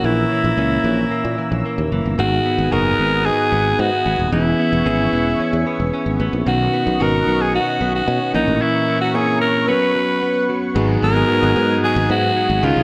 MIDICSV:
0, 0, Header, 1, 8, 480
1, 0, Start_track
1, 0, Tempo, 535714
1, 37, Time_signature, 4, 2, 24, 8
1, 11496, End_track
2, 0, Start_track
2, 0, Title_t, "Analog synth pad"
2, 0, Program_c, 0, 89
2, 0, Note_on_c, 0, 73, 72
2, 0, Note_on_c, 0, 76, 70
2, 0, Note_on_c, 0, 82, 68
2, 0, Note_on_c, 0, 88, 82
2, 1924, Note_off_c, 0, 73, 0
2, 1937, Note_off_c, 0, 88, 0
2, 1938, Note_off_c, 0, 82, 0
2, 1939, Note_off_c, 0, 76, 0
2, 1951, Note_on_c, 0, 80, 69
2, 1954, Note_on_c, 0, 78, 70
2, 1955, Note_on_c, 0, 87, 83
2, 1956, Note_on_c, 0, 59, 73
2, 3856, Note_off_c, 0, 78, 0
2, 3857, Note_off_c, 0, 87, 0
2, 3878, Note_on_c, 0, 76, 68
2, 3880, Note_on_c, 0, 85, 81
2, 5758, Note_off_c, 0, 80, 0
2, 5778, Note_off_c, 0, 76, 0
2, 5779, Note_off_c, 0, 85, 0
2, 5795, Note_on_c, 0, 78, 70
2, 5797, Note_on_c, 0, 75, 70
2, 5797, Note_on_c, 0, 85, 83
2, 7440, Note_off_c, 0, 59, 0
2, 7459, Note_off_c, 0, 78, 0
2, 7460, Note_off_c, 0, 75, 0
2, 7460, Note_off_c, 0, 85, 0
2, 7482, Note_on_c, 0, 76, 66
2, 7483, Note_on_c, 0, 70, 75
2, 7484, Note_on_c, 0, 85, 83
2, 7485, Note_on_c, 0, 73, 68
2, 8667, Note_off_c, 0, 76, 0
2, 8668, Note_off_c, 0, 70, 0
2, 8679, Note_on_c, 0, 71, 71
2, 8679, Note_on_c, 0, 78, 68
2, 9619, Note_off_c, 0, 73, 0
2, 9619, Note_off_c, 0, 85, 0
2, 9626, Note_off_c, 0, 78, 0
2, 9628, Note_off_c, 0, 71, 0
2, 9631, Note_on_c, 0, 59, 77
2, 9634, Note_on_c, 0, 87, 85
2, 9635, Note_on_c, 0, 80, 69
2, 9637, Note_on_c, 0, 78, 71
2, 11297, Note_off_c, 0, 59, 0
2, 11300, Note_off_c, 0, 78, 0
2, 11314, Note_on_c, 0, 73, 81
2, 11315, Note_on_c, 0, 77, 69
2, 11496, Note_off_c, 0, 73, 0
2, 11496, Note_off_c, 0, 77, 0
2, 11496, Note_off_c, 0, 80, 0
2, 11496, Note_off_c, 0, 87, 0
2, 11496, End_track
3, 0, Start_track
3, 0, Title_t, "Alto saxophone"
3, 0, Program_c, 1, 65
3, 49, Note_on_c, 1, 64, 83
3, 1483, Note_off_c, 1, 64, 0
3, 1968, Note_on_c, 1, 66, 93
3, 2439, Note_on_c, 1, 70, 98
3, 2453, Note_off_c, 1, 66, 0
3, 2917, Note_on_c, 1, 68, 98
3, 2931, Note_off_c, 1, 70, 0
3, 3405, Note_on_c, 1, 66, 93
3, 3418, Note_off_c, 1, 68, 0
3, 3873, Note_off_c, 1, 66, 0
3, 3878, Note_on_c, 1, 64, 84
3, 5281, Note_off_c, 1, 64, 0
3, 5808, Note_on_c, 1, 66, 82
3, 6290, Note_on_c, 1, 70, 90
3, 6304, Note_off_c, 1, 66, 0
3, 6647, Note_on_c, 1, 68, 86
3, 6660, Note_off_c, 1, 70, 0
3, 6762, Note_off_c, 1, 68, 0
3, 6768, Note_on_c, 1, 66, 85
3, 7097, Note_off_c, 1, 66, 0
3, 7124, Note_on_c, 1, 66, 85
3, 7455, Note_off_c, 1, 66, 0
3, 7480, Note_on_c, 1, 63, 81
3, 7719, Note_on_c, 1, 64, 92
3, 7733, Note_off_c, 1, 63, 0
3, 8069, Note_off_c, 1, 64, 0
3, 8075, Note_on_c, 1, 66, 86
3, 8200, Note_on_c, 1, 68, 88
3, 8214, Note_off_c, 1, 66, 0
3, 8428, Note_off_c, 1, 68, 0
3, 8434, Note_on_c, 1, 70, 93
3, 8669, Note_on_c, 1, 71, 94
3, 8682, Note_off_c, 1, 70, 0
3, 9393, Note_off_c, 1, 71, 0
3, 9889, Note_on_c, 1, 70, 94
3, 10567, Note_off_c, 1, 70, 0
3, 10612, Note_on_c, 1, 68, 87
3, 10828, Note_off_c, 1, 68, 0
3, 10851, Note_on_c, 1, 66, 90
3, 11334, Note_on_c, 1, 65, 85
3, 11347, Note_off_c, 1, 66, 0
3, 11496, Note_off_c, 1, 65, 0
3, 11496, End_track
4, 0, Start_track
4, 0, Title_t, "Tine electric piano"
4, 0, Program_c, 2, 4
4, 0, Control_c, 2, 64, 127
4, 0, Note_on_c, 2, 46, 57
4, 0, Note_on_c, 2, 58, 75
4, 0, Note_on_c, 2, 61, 63
4, 0, Note_on_c, 2, 64, 69
4, 0, Note_on_c, 2, 70, 78
4, 371, Note_off_c, 2, 58, 0
4, 372, Note_off_c, 2, 61, 0
4, 375, Note_off_c, 2, 64, 0
4, 376, Note_off_c, 2, 70, 0
4, 482, Note_off_c, 2, 46, 0
4, 518, Note_on_c, 2, 58, 73
4, 522, Note_on_c, 2, 61, 69
4, 526, Note_on_c, 2, 64, 67
4, 528, Note_on_c, 2, 70, 75
4, 1204, Note_off_c, 2, 58, 0
4, 1206, Note_off_c, 2, 61, 0
4, 1208, Note_off_c, 2, 64, 0
4, 1209, Note_off_c, 2, 70, 0
4, 1953, Note_on_c, 2, 59, 65
4, 1958, Note_on_c, 2, 63, 62
4, 1960, Note_on_c, 2, 44, 56
4, 1962, Note_on_c, 2, 66, 61
4, 1964, Note_on_c, 2, 68, 71
4, 1968, Control_c, 2, 64, 0
4, 2128, Control_c, 2, 64, 127
4, 2298, Note_off_c, 2, 59, 0
4, 2300, Note_off_c, 2, 63, 0
4, 2302, Note_off_c, 2, 66, 0
4, 2303, Note_off_c, 2, 68, 0
4, 2434, Note_on_c, 2, 59, 72
4, 2438, Note_on_c, 2, 63, 65
4, 2440, Note_on_c, 2, 66, 68
4, 2442, Note_on_c, 2, 68, 78
4, 2642, Note_off_c, 2, 44, 0
4, 3122, Note_off_c, 2, 59, 0
4, 3124, Note_off_c, 2, 63, 0
4, 3125, Note_off_c, 2, 66, 0
4, 3126, Note_off_c, 2, 68, 0
4, 3870, Note_on_c, 2, 59, 65
4, 3873, Note_on_c, 2, 61, 59
4, 3877, Note_on_c, 2, 52, 59
4, 3877, Note_on_c, 2, 64, 60
4, 3881, Note_on_c, 2, 68, 72
4, 3889, Control_c, 2, 64, 0
4, 4052, Control_c, 2, 64, 127
4, 4216, Note_off_c, 2, 59, 0
4, 4218, Note_off_c, 2, 61, 0
4, 4220, Note_off_c, 2, 64, 0
4, 4222, Note_off_c, 2, 68, 0
4, 4355, Note_on_c, 2, 59, 74
4, 4360, Note_on_c, 2, 61, 66
4, 4363, Note_on_c, 2, 64, 68
4, 4365, Note_on_c, 2, 68, 85
4, 4561, Note_off_c, 2, 52, 0
4, 5042, Note_off_c, 2, 59, 0
4, 5045, Note_off_c, 2, 61, 0
4, 5046, Note_off_c, 2, 64, 0
4, 5047, Note_off_c, 2, 68, 0
4, 5791, Note_on_c, 2, 59, 70
4, 5793, Note_on_c, 2, 61, 58
4, 5795, Note_on_c, 2, 47, 56
4, 5798, Note_on_c, 2, 63, 59
4, 5802, Note_on_c, 2, 66, 78
4, 5806, Control_c, 2, 64, 0
4, 5962, Control_c, 2, 64, 127
4, 6137, Note_off_c, 2, 59, 0
4, 6138, Note_off_c, 2, 61, 0
4, 6140, Note_off_c, 2, 63, 0
4, 6143, Note_off_c, 2, 66, 0
4, 6269, Note_on_c, 2, 59, 72
4, 6274, Note_on_c, 2, 61, 70
4, 6276, Note_on_c, 2, 63, 65
4, 6280, Note_on_c, 2, 66, 81
4, 6480, Note_off_c, 2, 47, 0
4, 6959, Note_off_c, 2, 59, 0
4, 6962, Note_off_c, 2, 61, 0
4, 6963, Note_off_c, 2, 63, 0
4, 6965, Note_off_c, 2, 66, 0
4, 7470, Note_on_c, 2, 58, 71
4, 7473, Note_on_c, 2, 61, 63
4, 7474, Note_on_c, 2, 46, 58
4, 7476, Note_on_c, 2, 64, 67
4, 7482, Note_on_c, 2, 70, 76
4, 7487, Control_c, 2, 64, 0
4, 7651, Control_c, 2, 64, 127
4, 8049, Note_off_c, 2, 58, 0
4, 8051, Note_off_c, 2, 61, 0
4, 8052, Note_off_c, 2, 64, 0
4, 8055, Note_off_c, 2, 70, 0
4, 8160, Note_off_c, 2, 46, 0
4, 8191, Note_on_c, 2, 58, 75
4, 8194, Note_on_c, 2, 60, 51
4, 8198, Note_on_c, 2, 64, 68
4, 8201, Note_on_c, 2, 70, 79
4, 8251, Note_on_c, 2, 61, 68
4, 8253, Note_off_c, 2, 60, 0
4, 8664, Note_off_c, 2, 61, 0
4, 8673, Note_on_c, 2, 59, 69
4, 8674, Note_off_c, 2, 58, 0
4, 8675, Note_on_c, 2, 61, 63
4, 8677, Note_off_c, 2, 64, 0
4, 8678, Note_off_c, 2, 70, 0
4, 8678, Note_on_c, 2, 66, 68
4, 8683, Note_on_c, 2, 71, 74
4, 8686, Control_c, 2, 64, 0
4, 8861, Control_c, 2, 64, 127
4, 9443, Note_off_c, 2, 59, 0
4, 9443, Note_off_c, 2, 61, 0
4, 9445, Note_off_c, 2, 66, 0
4, 9448, Note_off_c, 2, 71, 0
4, 9634, Note_on_c, 2, 59, 82
4, 9638, Note_on_c, 2, 63, 77
4, 9639, Note_on_c, 2, 44, 72
4, 9644, Note_on_c, 2, 66, 75
4, 9645, Note_on_c, 2, 68, 95
4, 9646, Control_c, 2, 64, 0
4, 9824, Control_c, 2, 64, 127
4, 9893, Note_off_c, 2, 59, 0
4, 9895, Note_off_c, 2, 63, 0
4, 9897, Note_off_c, 2, 66, 0
4, 9898, Note_off_c, 2, 68, 0
4, 9993, Note_on_c, 2, 59, 74
4, 9998, Note_on_c, 2, 63, 63
4, 10001, Note_on_c, 2, 66, 67
4, 10005, Note_on_c, 2, 68, 81
4, 10166, Note_off_c, 2, 59, 0
4, 10169, Note_off_c, 2, 63, 0
4, 10171, Note_off_c, 2, 66, 0
4, 10172, Note_off_c, 2, 68, 0
4, 10232, Note_on_c, 2, 59, 75
4, 10237, Note_on_c, 2, 63, 70
4, 10239, Note_on_c, 2, 66, 69
4, 10243, Note_on_c, 2, 68, 76
4, 10322, Note_off_c, 2, 44, 0
4, 10921, Note_off_c, 2, 59, 0
4, 10923, Note_off_c, 2, 63, 0
4, 10924, Note_off_c, 2, 66, 0
4, 10926, Note_off_c, 2, 68, 0
4, 11313, Note_on_c, 2, 61, 75
4, 11317, Note_on_c, 2, 63, 72
4, 11318, Note_on_c, 2, 49, 63
4, 11321, Note_on_c, 2, 65, 71
4, 11323, Note_on_c, 2, 68, 84
4, 11328, Control_c, 2, 64, 0
4, 11496, Note_off_c, 2, 49, 0
4, 11496, Note_off_c, 2, 61, 0
4, 11496, Note_off_c, 2, 63, 0
4, 11496, Note_off_c, 2, 65, 0
4, 11496, Note_off_c, 2, 68, 0
4, 11496, End_track
5, 0, Start_track
5, 0, Title_t, "Clean electric guitar"
5, 0, Program_c, 3, 27
5, 0, Note_on_c, 3, 61, 59
5, 42, Note_on_c, 3, 52, 70
5, 271, Note_off_c, 3, 52, 0
5, 281, Note_on_c, 3, 52, 58
5, 520, Note_off_c, 3, 61, 0
5, 523, Note_on_c, 3, 61, 63
5, 749, Note_off_c, 3, 52, 0
5, 760, Note_on_c, 3, 52, 53
5, 997, Note_on_c, 3, 58, 54
5, 1228, Note_off_c, 3, 52, 0
5, 1239, Note_on_c, 3, 52, 55
5, 1472, Note_off_c, 3, 58, 0
5, 1483, Note_on_c, 3, 58, 55
5, 1714, Note_off_c, 3, 52, 0
5, 1724, Note_on_c, 3, 52, 54
5, 1956, Note_off_c, 3, 52, 0
5, 1959, Note_on_c, 3, 51, 74
5, 2008, Note_off_c, 3, 58, 0
5, 2008, Note_off_c, 3, 61, 0
5, 2202, Note_on_c, 3, 59, 56
5, 2441, Note_on_c, 3, 66, 64
5, 2669, Note_off_c, 3, 59, 0
5, 2673, Note_on_c, 3, 59, 54
5, 2916, Note_on_c, 3, 63, 54
5, 3150, Note_off_c, 3, 59, 0
5, 3153, Note_on_c, 3, 59, 58
5, 3384, Note_off_c, 3, 63, 0
5, 3395, Note_on_c, 3, 63, 56
5, 3633, Note_off_c, 3, 59, 0
5, 3636, Note_on_c, 3, 59, 52
5, 3872, Note_off_c, 3, 51, 0
5, 3876, Note_on_c, 3, 52, 75
5, 3923, Note_off_c, 3, 63, 0
5, 3927, Note_off_c, 3, 66, 0
5, 4110, Note_off_c, 3, 59, 0
5, 4113, Note_on_c, 3, 59, 55
5, 4357, Note_on_c, 3, 68, 60
5, 4593, Note_off_c, 3, 59, 0
5, 4596, Note_on_c, 3, 59, 57
5, 4835, Note_on_c, 3, 61, 58
5, 5073, Note_off_c, 3, 59, 0
5, 5077, Note_on_c, 3, 59, 57
5, 5315, Note_off_c, 3, 61, 0
5, 5318, Note_on_c, 3, 61, 55
5, 5555, Note_off_c, 3, 59, 0
5, 5559, Note_on_c, 3, 59, 54
5, 5795, Note_off_c, 3, 52, 0
5, 5798, Note_on_c, 3, 51, 76
5, 5845, Note_off_c, 3, 68, 0
5, 5846, Note_off_c, 3, 59, 0
5, 6035, Note_on_c, 3, 59, 55
5, 6062, Note_off_c, 3, 61, 0
5, 6273, Note_on_c, 3, 66, 63
5, 6506, Note_off_c, 3, 59, 0
5, 6517, Note_on_c, 3, 59, 57
5, 6758, Note_on_c, 3, 61, 54
5, 6988, Note_off_c, 3, 59, 0
5, 6999, Note_on_c, 3, 59, 55
5, 7234, Note_off_c, 3, 61, 0
5, 7238, Note_on_c, 3, 61, 56
5, 7473, Note_off_c, 3, 51, 0
5, 7477, Note_on_c, 3, 52, 70
5, 7523, Note_off_c, 3, 66, 0
5, 7526, Note_off_c, 3, 59, 0
5, 7710, Note_off_c, 3, 52, 0
5, 7721, Note_on_c, 3, 52, 78
5, 7949, Note_off_c, 3, 52, 0
5, 7960, Note_on_c, 3, 52, 57
5, 8197, Note_off_c, 3, 61, 0
5, 8201, Note_on_c, 3, 61, 65
5, 8430, Note_off_c, 3, 52, 0
5, 8441, Note_on_c, 3, 52, 58
5, 8677, Note_off_c, 3, 52, 0
5, 8681, Note_on_c, 3, 54, 72
5, 8727, Note_off_c, 3, 61, 0
5, 8916, Note_off_c, 3, 54, 0
5, 8920, Note_on_c, 3, 54, 54
5, 9161, Note_on_c, 3, 59, 55
5, 9398, Note_off_c, 3, 54, 0
5, 9401, Note_on_c, 3, 54, 55
5, 9628, Note_off_c, 3, 54, 0
5, 9638, Note_on_c, 3, 54, 83
5, 9687, Note_off_c, 3, 59, 0
5, 9876, Note_on_c, 3, 59, 61
5, 10102, Note_off_c, 3, 54, 0
5, 10112, Note_on_c, 3, 54, 61
5, 10360, Note_on_c, 3, 63, 63
5, 10591, Note_off_c, 3, 54, 0
5, 10601, Note_on_c, 3, 54, 69
5, 10827, Note_off_c, 3, 59, 0
5, 10838, Note_on_c, 3, 59, 61
5, 11068, Note_off_c, 3, 54, 0
5, 11079, Note_on_c, 3, 54, 61
5, 11311, Note_off_c, 3, 54, 0
5, 11314, Note_on_c, 3, 51, 80
5, 11365, Note_off_c, 3, 59, 0
5, 11496, Note_off_c, 3, 51, 0
5, 11496, Note_off_c, 3, 63, 0
5, 11496, End_track
6, 0, Start_track
6, 0, Title_t, "Overdriven electric guitar"
6, 0, Program_c, 4, 29
6, 9635, Note_on_c, 4, 44, 85
6, 9648, Note_on_c, 4, 51, 88
6, 9654, Note_on_c, 4, 56, 93
6, 10103, Note_off_c, 4, 44, 0
6, 10114, Note_on_c, 4, 44, 63
6, 10125, Note_off_c, 4, 51, 0
6, 10129, Note_on_c, 4, 51, 62
6, 10135, Note_off_c, 4, 56, 0
6, 10139, Note_on_c, 4, 56, 66
6, 10580, Note_off_c, 4, 44, 0
6, 10590, Note_on_c, 4, 44, 59
6, 10602, Note_off_c, 4, 51, 0
6, 10606, Note_on_c, 4, 51, 66
6, 10613, Note_off_c, 4, 56, 0
6, 10617, Note_on_c, 4, 56, 67
6, 11313, Note_off_c, 4, 44, 0
6, 11314, Note_on_c, 4, 61, 68
6, 11318, Note_off_c, 4, 56, 0
6, 11321, Note_on_c, 4, 56, 58
6, 11325, Note_off_c, 4, 51, 0
6, 11329, Note_on_c, 4, 49, 54
6, 11496, Note_off_c, 4, 49, 0
6, 11496, Note_off_c, 4, 56, 0
6, 11496, Note_off_c, 4, 61, 0
6, 11496, End_track
7, 0, Start_track
7, 0, Title_t, "Fretless electric bass"
7, 0, Program_c, 5, 35
7, 35, Note_on_c, 5, 34, 91
7, 216, Note_off_c, 5, 34, 0
7, 397, Note_on_c, 5, 34, 93
7, 487, Note_off_c, 5, 34, 0
7, 515, Note_on_c, 5, 37, 86
7, 695, Note_off_c, 5, 37, 0
7, 753, Note_on_c, 5, 34, 81
7, 934, Note_off_c, 5, 34, 0
7, 1117, Note_on_c, 5, 46, 85
7, 1207, Note_off_c, 5, 46, 0
7, 1359, Note_on_c, 5, 34, 85
7, 1448, Note_off_c, 5, 34, 0
7, 1595, Note_on_c, 5, 39, 77
7, 1686, Note_off_c, 5, 39, 0
7, 1720, Note_on_c, 5, 30, 82
7, 1809, Note_off_c, 5, 30, 0
7, 1842, Note_on_c, 5, 31, 70
7, 1930, Note_off_c, 5, 31, 0
7, 1960, Note_on_c, 5, 32, 98
7, 2138, Note_off_c, 5, 32, 0
7, 2315, Note_on_c, 5, 32, 87
7, 2406, Note_off_c, 5, 32, 0
7, 2438, Note_on_c, 5, 30, 88
7, 2617, Note_off_c, 5, 30, 0
7, 2678, Note_on_c, 5, 32, 82
7, 2948, Note_off_c, 5, 32, 0
7, 3156, Note_on_c, 5, 32, 82
7, 3336, Note_off_c, 5, 32, 0
7, 3396, Note_on_c, 5, 44, 91
7, 3486, Note_off_c, 5, 44, 0
7, 3637, Note_on_c, 5, 32, 86
7, 3727, Note_off_c, 5, 32, 0
7, 3757, Note_on_c, 5, 27, 89
7, 3847, Note_off_c, 5, 27, 0
7, 3874, Note_on_c, 5, 28, 105
7, 4055, Note_off_c, 5, 28, 0
7, 4234, Note_on_c, 5, 28, 88
7, 4325, Note_off_c, 5, 28, 0
7, 4354, Note_on_c, 5, 32, 93
7, 4535, Note_off_c, 5, 32, 0
7, 4595, Note_on_c, 5, 28, 84
7, 4775, Note_off_c, 5, 28, 0
7, 4956, Note_on_c, 5, 40, 86
7, 5046, Note_off_c, 5, 40, 0
7, 5194, Note_on_c, 5, 28, 78
7, 5285, Note_off_c, 5, 28, 0
7, 5429, Note_on_c, 5, 32, 75
7, 5522, Note_off_c, 5, 32, 0
7, 5552, Note_on_c, 5, 33, 91
7, 5644, Note_off_c, 5, 33, 0
7, 5672, Note_on_c, 5, 34, 88
7, 5764, Note_off_c, 5, 34, 0
7, 5792, Note_on_c, 5, 35, 97
7, 5974, Note_off_c, 5, 35, 0
7, 6153, Note_on_c, 5, 35, 95
7, 6244, Note_off_c, 5, 35, 0
7, 6276, Note_on_c, 5, 32, 86
7, 6456, Note_off_c, 5, 32, 0
7, 6515, Note_on_c, 5, 35, 79
7, 6786, Note_off_c, 5, 35, 0
7, 6995, Note_on_c, 5, 35, 80
7, 7175, Note_off_c, 5, 35, 0
7, 7237, Note_on_c, 5, 47, 99
7, 7327, Note_off_c, 5, 47, 0
7, 7476, Note_on_c, 5, 34, 88
7, 7566, Note_off_c, 5, 34, 0
7, 7597, Note_on_c, 5, 33, 78
7, 7687, Note_off_c, 5, 33, 0
7, 9638, Note_on_c, 5, 32, 111
7, 9817, Note_off_c, 5, 32, 0
7, 9877, Note_on_c, 5, 32, 89
7, 10057, Note_off_c, 5, 32, 0
7, 10240, Note_on_c, 5, 32, 87
7, 10328, Note_off_c, 5, 32, 0
7, 10357, Note_on_c, 5, 44, 99
7, 10537, Note_off_c, 5, 44, 0
7, 10718, Note_on_c, 5, 32, 104
7, 10807, Note_off_c, 5, 32, 0
7, 10839, Note_on_c, 5, 44, 100
7, 11018, Note_off_c, 5, 44, 0
7, 11196, Note_on_c, 5, 32, 91
7, 11286, Note_off_c, 5, 32, 0
7, 11319, Note_on_c, 5, 37, 102
7, 11408, Note_off_c, 5, 37, 0
7, 11437, Note_on_c, 5, 36, 90
7, 11496, Note_off_c, 5, 36, 0
7, 11496, End_track
8, 0, Start_track
8, 0, Title_t, "Muted fretless electric bass strokes"
8, 997, Note_on_c, 9, 29, 43
8, 1086, Note_off_c, 9, 29, 0
8, 4834, Note_on_c, 9, 29, 44
8, 4924, Note_off_c, 9, 29, 0
8, 11496, End_track
0, 0, End_of_file